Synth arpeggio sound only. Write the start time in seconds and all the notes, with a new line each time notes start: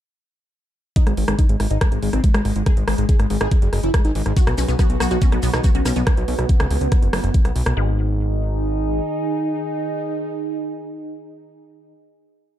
4.37 F#4
4.47 F#4
4.58 C#4
4.68 B3
4.79 B3
5.00 F#4
5.11 F#4
5.22 C#4
5.32 B3
5.43 B3
5.64 F#4
5.75 F#4
5.85 C#4
5.96 B3
7.77 G#3